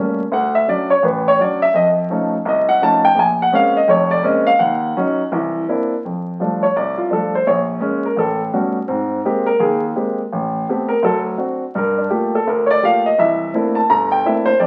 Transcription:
0.00 0.20 G3 medium
0.00 0.20 A3 soft
0.00 0.20 A#3 soft
0.00 0.21 C#4 medium
0.32 0.63 D2 medium
0.32 0.55 F#5 medium
0.55 0.68 E5 medium
0.68 0.92 F#3 medium
0.68 0.92 C#4 soft
0.68 0.92 D4 medium
0.68 0.91 D5 medium
0.90 1.03 C#5 medium
1.03 1.34 A1 medium
1.03 1.26 B4 medium
1.28 1.40 C#5 loud
1.39 1.63 F#3 medium
1.39 1.63 C#4 soft
1.39 1.63 D4 medium
1.39 1.62 D5 medium
1.62 1.75 E5 loud
1.74 2.05 F2 medium
1.74 1.89 D#5 loud
2.10 2.34 F3 medium
2.10 2.35 A3 medium
2.10 2.35 C#4 medium
2.10 2.35 D#4 medium
2.45 2.77 C2 medium
2.45 2.70 D#5 medium
2.69 2.82 F#5 medium
2.81 3.05 F3 medium
2.81 3.06 A3 soft
2.81 3.06 C#4 medium
2.81 3.06 D#4 medium
2.81 3.05 A5 loud
3.05 3.17 G5 loud
3.15 3.47 A#1 medium
3.15 3.40 G#5 medium
3.42 3.54 F#5 loud
3.52 3.76 G#3 medium
3.52 3.77 A#3 medium
3.52 3.76 C4 medium
3.52 3.77 C#4 medium
3.52 3.76 F5 loud
3.77 3.89 D#5 medium
3.88 4.19 F1 medium
3.88 4.19 F2 medium
3.88 4.11 C#5 medium
4.11 4.24 D5 loud
4.23 4.47 G#3 medium
4.23 4.47 A#3 medium
4.23 4.48 C4 medium
4.23 4.48 C#4 medium
4.23 4.47 D#5 medium
4.47 4.59 F5 loud
4.59 4.90 D#2 medium
4.59 5.27 F#5 medium
4.96 5.20 F#3 medium
4.96 5.20 C#4 medium
4.96 5.21 D#4 medium
5.32 5.63 C2 medium
5.32 5.63 E3 medium
5.68 5.92 A#3 medium
5.68 5.93 C4 medium
5.68 5.93 D4 medium
5.68 5.93 E4 medium
6.05 6.35 F2 medium
6.40 6.64 F3 medium
6.40 6.64 G3 soft
6.40 6.64 A3 medium
6.40 6.65 D4 medium
6.63 6.75 C#5 medium
6.76 7.07 C2 medium
6.76 6.98 D5 medium
6.98 7.10 F4 medium
7.10 7.35 F3 medium
7.10 7.35 G3 soft
7.10 7.35 A3 soft
7.10 7.35 D4 medium
7.10 7.34 A4 medium
7.35 7.47 C5 medium
7.47 7.78 A#1 medium
7.47 7.61 C#5 medium
7.80 8.05 G#3 medium
7.80 8.05 A#3 medium
7.80 8.06 C#4 medium
8.05 8.18 A#4 medium
8.17 8.48 A1 medium
8.17 8.40 A4 medium
8.53 8.77 G3 medium
8.53 8.77 A3 medium
8.53 8.77 B3 soft
8.53 8.77 C#4 soft
8.53 8.77 F#4 medium
8.88 9.19 G#2 medium
8.88 9.19 C4 medium
9.25 9.48 G#3 medium
9.25 9.49 A#3 medium
9.25 9.49 C4 medium
9.25 9.49 G4 medium
9.46 9.59 A#4 medium
9.60 9.90 D#2 medium
9.60 9.82 G#4 medium
9.96 10.20 G#3 medium
9.96 10.20 A#3 medium
9.96 10.20 C4 soft
9.96 10.20 G4 medium
10.33 10.63 A1 medium
10.69 10.92 A3 medium
10.69 10.92 B3 medium
10.69 10.92 C4 medium
10.69 10.93 G4 medium
10.89 11.02 A#4 medium
11.02 11.34 D2 medium
11.02 11.34 F#3 medium
11.02 11.18 A4 medium
11.38 11.63 C4 medium
11.38 11.63 D4 soft
11.38 11.63 F#4 medium
11.75 12.06 G2 medium
11.75 11.99 A#4 medium
11.98 12.11 D4 medium
12.10 12.35 A3 medium
12.10 12.35 A#3 medium
12.10 12.35 F4 medium
12.10 12.35 G4 medium
12.35 12.47 A4 medium
12.47 12.78 D2 medium
12.47 12.70 A#4 medium
12.66 12.68 C#5 medium
12.71 12.83 D5 loud
12.83 13.07 A3 medium
12.83 13.07 A#3 soft
12.83 13.07 F4 medium
12.83 13.07 G4 medium
12.83 13.06 F5 loud
13.06 13.19 D#5 medium
13.19 13.49 C2 medium
13.19 13.49 E3 medium
13.19 13.52 E5 medium
13.54 13.78 A3 medium
13.54 13.78 A#3 medium
13.54 13.78 C4 medium
13.54 13.79 D4 medium
13.54 13.79 E4 medium
13.75 13.89 A5 medium
13.90 14.20 G1 medium
13.90 14.12 A#5 medium
14.12 14.24 G5 medium
14.25 14.49 A3 medium
14.25 14.49 A#3 medium
14.25 14.49 C4 medium
14.25 14.49 D4 medium
14.25 14.49 E4 medium
14.25 14.48 E5 medium
14.46 14.59 C5 loud
14.60 14.67 F2 medium
14.60 14.67 D5 medium

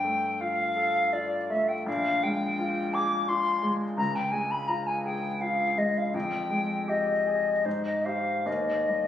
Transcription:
0.00 1.82 G2 medium
0.00 0.42 G5 medium
0.05 0.63 A3 soft
0.40 0.98 F4 soft
0.40 1.14 F5 medium
0.77 1.35 A4 soft
1.13 1.72 F4 soft
1.13 1.48 D5 medium
1.49 1.87 A3 soft
1.49 1.69 E5 medium
1.68 1.85 G5 medium
1.86 3.94 A#1 medium
1.86 2.24 F5 medium
2.23 2.80 G#3 soft
2.23 2.95 G5 medium
2.59 3.15 F4 soft
2.94 3.49 G#4 soft
2.94 3.29 D6 medium
3.28 3.84 F4 soft
3.28 3.73 C6 medium
3.63 3.98 G#3 soft
3.97 6.10 C#2 soft
3.97 4.17 A#5 medium
4.15 4.33 G5 medium
4.31 4.91 G#3 soft
4.31 4.52 G#5 medium
4.51 4.69 B5 medium
4.67 5.27 F4 soft
4.67 4.88 A#5 medium
4.86 5.04 G#5 medium
5.04 5.64 G#4 soft
5.04 5.42 G5 medium
5.40 6.00 F4 soft
5.40 5.79 F5 medium
5.78 6.14 G#3 soft
5.78 5.99 D#5 medium
5.97 6.16 F5 medium
6.14 7.61 F2 soft
6.14 6.90 G5 medium
6.50 7.11 G#3 soft
6.88 7.50 G4 soft
6.88 7.67 D#5 medium
7.27 7.66 G#4 soft
7.65 8.44 G#2 soft
7.65 7.85 C5 medium
7.86 8.06 D#5 soft
8.05 8.43 G4 soft
8.05 8.43 C5 soft
8.05 8.48 F5 medium
8.46 9.07 D#2 soft
8.46 9.07 D#5 medium
8.89 9.07 G3 soft

